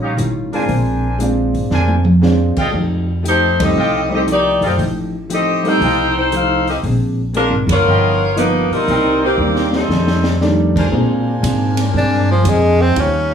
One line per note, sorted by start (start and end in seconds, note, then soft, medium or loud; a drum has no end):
0.00 0.15 A#1 medium
0.00 0.15 G3 medium
0.00 0.15 A#3 medium
0.00 0.15 C#4 medium
0.00 0.13 D#4 medium
0.00 0.15 F4 medium
0.00 0.13 G4 medium
0.00 0.13 C#5 medium
0.00 0.13 F5 medium
0.17 0.65 A1 medium
0.17 0.54 D#3 medium
0.17 0.54 G3 medium
0.17 0.54 C#4 medium
0.17 0.55 F4 medium
0.17 closed hi-hat medium
0.53 0.68 G#3 medium
0.53 0.68 C4 medium
0.53 1.17 D4 medium
0.53 0.68 D4 medium
0.53 0.68 F4 medium
0.53 1.17 A#4 medium
0.53 1.17 C5 medium
0.53 1.17 G#5 medium
0.53 open hi-hat soft
0.66 1.51 A#1 medium
0.66 1.04 A#2 medium
0.66 1.05 G#3 medium
0.66 1.06 C4 medium
0.66 1.06 D4 soft
0.66 kick soft
0.66 open hi-hat soft
1.19 1.56 A#2 medium
1.19 1.56 G#3 medium
1.19 1.99 G#3 medium
1.19 1.56 C4 medium
1.19 1.99 C4 soft
1.19 1.57 D4 medium
1.19 2.00 D4 medium
1.19 2.00 F4 medium
1.19 closed hi-hat medium
1.54 1.70 G#1 medium
1.54 open hi-hat soft
1.70 2.53 F2 medium
1.70 2.07 A#2 soft
1.70 2.08 G#3 soft
1.70 2.08 C4 medium
1.70 1.95 D4 medium
1.70 2.09 D4 soft
1.70 1.95 A#4 medium
1.70 1.95 C5 medium
1.70 1.95 G#5 medium
1.70 snare soft
1.88 high tom medium
2.05 mid tom medium
2.21 2.58 A#2 medium
2.21 2.59 G#3 medium
2.21 2.74 G#3 medium
2.21 2.59 C4 medium
2.21 2.74 C4 medium
2.21 2.59 D4 medium
2.21 2.74 D4 medium
2.21 2.74 F4 medium
2.21 snare soft
2.56 2.69 F4 medium
2.56 2.69 A4 medium
2.56 2.69 D#5 medium
2.56 2.69 G5 loud
2.56 muted upright bass stroke soft
2.56 kick medium
2.56 crash medium
2.71 3.72 F2 medium
2.71 3.09 F3 medium
2.71 3.10 A3 soft
2.71 3.10 D#4 medium
2.71 3.10 G4 medium
2.71 kick soft
3.23 3.60 F3 medium
3.23 3.61 A3 medium
3.23 3.61 D#4 medium
3.23 3.61 G4 medium
3.23 closed hi-hat medium
3.27 3.59 A3 medium
3.27 3.59 D#4 medium
3.27 3.59 G4 medium
3.27 3.59 C5 loud
3.59 3.74 G3 medium
3.59 3.74 A3 medium
3.59 3.75 C4 medium
3.59 4.12 C4 medium
3.59 3.75 D#4 medium
3.59 4.12 G4 medium
3.59 4.12 A4 medium
3.59 4.12 D#5 medium
3.59 kick medium
3.59 ride medium
3.76 4.58 C2 medium
3.76 4.12 F3 soft
3.76 4.13 A3 soft
3.76 4.13 D#4 soft
3.76 4.01 F4 medium
3.76 4.14 G4 soft
3.76 4.01 A4 medium
3.76 4.01 D#5 medium
3.76 4.00 G5 medium
4.09 4.25 G3 medium
4.09 4.25 A3 medium
4.09 4.25 C4 medium
4.09 4.25 D#4 medium
4.14 4.21 C4 medium
4.14 4.21 G4 medium
4.14 4.21 A4 medium
4.14 4.21 D#5 medium
4.27 4.63 F3 medium
4.27 4.64 A3 soft
4.27 4.64 D#4 medium
4.27 4.65 G4 medium
4.27 closed hi-hat medium
4.31 4.62 A#3 medium
4.31 4.62 D#4 medium
4.31 4.62 G4 medium
4.31 4.62 D5 medium
4.61 4.77 F#2 medium
4.61 4.73 F4 medium
4.61 4.74 A4 medium
4.61 4.74 D#5 medium
4.61 4.74 G5 medium
4.61 open hi-hat soft
4.66 4.81 A3 medium
4.66 4.81 D#4 medium
4.66 4.81 G4 medium
4.66 4.81 C5 medium
4.78 5.77 A1 medium
4.78 5.15 F3 soft
4.78 5.15 A3 soft
4.78 5.16 D#4 soft
4.78 5.16 G4 medium
4.78 kick soft
4.78 open hi-hat soft
5.30 5.66 F3 medium
5.30 5.66 A3 medium
5.30 5.63 C4 medium
5.30 5.67 D#4 medium
5.30 5.67 G4 medium
5.30 5.63 G4 medium
5.30 5.63 A4 medium
5.30 5.63 D#5 loud
5.30 closed hi-hat medium
5.63 5.79 G3 medium
5.63 5.79 A3 medium
5.63 5.79 C4 medium
5.63 5.79 D#4 medium
5.63 6.16 D#4 medium
5.63 6.16 A4 medium
5.63 6.16 C5 medium
5.63 6.16 G5 loud
5.63 open hi-hat soft
5.81 6.79 C2 medium
5.81 6.17 F3 soft
5.81 6.18 A3 soft
5.81 6.18 D#4 soft
5.81 6.05 F4 medium
5.81 6.19 G4 soft
5.81 6.05 A4 medium
5.81 6.05 D#5 medium
5.81 6.05 G5 medium
5.81 kick soft
5.81 open hi-hat soft
6.17 6.32 D#4 medium
6.17 6.32 A4 medium
6.17 6.32 C5 medium
6.17 6.32 G5 medium
6.32 6.68 F3 medium
6.32 6.69 A3 medium
6.32 6.69 D#4 medium
6.32 6.68 D#4 medium
6.32 6.69 G4 medium
6.32 6.68 A4 medium
6.32 6.68 C5 medium
6.32 6.68 F5 medium
6.32 closed hi-hat medium
6.67 6.76 C4 medium
6.67 6.76 G4 medium
6.67 6.76 A4 medium
6.67 6.76 D#5 medium
6.67 open hi-hat soft
6.83 7.47 A#1 medium
6.83 7.20 A#2 soft
6.83 7.21 G#3 soft
6.83 7.21 C4 soft
6.83 7.21 D4 medium
6.83 kick soft
6.83 open hi-hat soft
7.33 7.70 A#2 medium
7.33 7.71 G#3 medium
7.33 7.51 G#3 medium
7.33 7.71 C4 medium
7.33 7.71 D4 medium
7.33 7.52 D4 medium
7.33 7.52 F4 medium
7.33 7.51 A#4 loud
7.33 closed hi-hat medium
7.50 7.66 G#1 medium
7.67 7.83 F#1 medium
7.67 8.33 B3 medium
7.67 8.33 F4 medium
7.67 8.33 A#4 loud
7.67 kick medium
7.67 ride medium
7.71 8.34 C#5 loud
7.85 8.67 G1 medium
7.85 8.22 G2 soft
7.85 8.22 F3 medium
7.85 8.23 B3 soft
7.85 8.23 D#4 soft
7.85 8.10 F4 medium
7.85 8.10 B4 medium
7.85 8.10 D#5 medium
7.85 8.10 G5 medium
8.36 8.73 G2 medium
8.36 8.88 F3 medium
8.36 8.73 F3 medium
8.36 8.69 F3 medium
8.36 8.88 A#3 medium
8.36 8.69 A#3 medium
8.36 8.88 B3 medium
8.36 8.74 B3 medium
8.36 8.69 D#4 medium
8.36 8.88 D#4 medium
8.36 8.74 D#4 medium
8.36 8.69 B4 loud
8.36 closed hi-hat medium
8.70 9.22 G3 medium
8.70 9.22 C4 medium
8.70 9.22 D#4 medium
8.70 9.23 A#4 loud
8.70 muted upright bass stroke soft
8.70 open hi-hat soft
8.88 9.35 C2 medium
8.88 9.25 C3 soft
8.88 9.25 G3 soft
8.88 9.25 A#3 soft
8.88 9.67 D#4 medium
8.88 9.26 D#4 medium
8.88 9.67 A#4 medium
8.88 9.67 C5 medium
8.88 9.67 G5 medium
8.88 kick soft
8.88 open hi-hat soft
9.24 9.71 D#3 medium
9.24 9.71 A#3 medium
9.24 9.71 C4 medium
9.24 9.71 G4 medium
9.38 9.86 D#2 medium
9.38 9.76 C3 medium
9.38 9.90 D#3 medium
9.38 9.90 G3 soft
9.38 9.76 G3 medium
9.38 9.91 A#3 soft
9.38 9.76 A#3 medium
9.38 9.91 D4 medium
9.42 9.77 D#4 medium
9.56 snare soft
9.73 10.41 G3 medium
9.73 10.42 C4 medium
9.73 10.42 D#4 medium
9.73 10.42 A4 medium
9.73 snare medium
9.88 10.87 F2 medium
9.88 10.27 F2 soft
9.88 snare medium
9.93 10.27 D#3 soft
9.93 10.28 A3 soft
9.93 10.28 D4 soft
10.07 snare medium
10.24 snare medium
10.41 10.78 F2 medium
10.41 10.92 D#3 medium
10.41 10.78 D#3 medium
10.41 10.92 G3 medium
10.41 10.93 A3 medium
10.41 10.78 A3 medium
10.41 10.90 D4 medium
10.41 10.79 D4 medium
10.41 snare medium
10.76 10.87 D4 medium
10.76 10.87 A#4 medium
10.76 10.87 C5 medium
10.76 10.87 G#5 medium
10.76 kick medium
10.76 crash medium
10.91 11.28 A#2 soft
10.91 11.42 A#2 medium
10.91 11.28 G#3 medium
10.91 12.35 A#3 soft
10.91 12.35 C4 soft
10.91 11.29 C4 medium
10.91 12.35 D4 soft
10.91 12.95 D4 medium
10.91 11.30 D4 medium
10.91 12.36 F4 medium
10.91 12.35 G#4 medium
10.91 12.95 A#4 medium
10.91 12.94 C5 medium
10.91 12.95 G#5 medium
10.91 kick soft
11.42 11.93 G#2 medium
11.42 11.79 A#2 medium
11.42 11.79 G#3 medium
11.42 11.79 C4 medium
11.42 11.80 D4 medium
11.42 kick soft
11.42 hi-hat pedal medium
11.42 ride medium
11.77 snare soft
11.77 ride medium
11.93 12.44 G2 medium
11.93 12.30 A#2 soft
11.93 12.31 G#3 soft
11.93 12.31 C4 soft
11.93 12.31 D4 soft
11.93 kick soft
11.98 12.28 D4 medium
12.31 12.50 F3 medium
12.42 12.95 F2 loud
12.42 12.80 A#2 medium
12.42 12.81 G#3 medium
12.42 12.81 C4 medium
12.42 12.81 D4 medium
12.42 kick soft
12.42 hi-hat pedal medium
12.42 ride medium
12.49 12.83 G#3 medium
12.81 13.02 C4 medium
12.95 13.34 D#2 medium
12.95 13.33 D#3 medium
12.95 13.33 G3 soft
12.95 13.34 C#4 soft
12.95 13.34 D#4 medium
12.95 13.34 F4 medium
12.95 13.34 G4 medium
12.95 13.34 C#5 medium
12.95 13.34 F5 medium
12.95 kick soft
12.95 ride medium
13.00 13.33 C#4 medium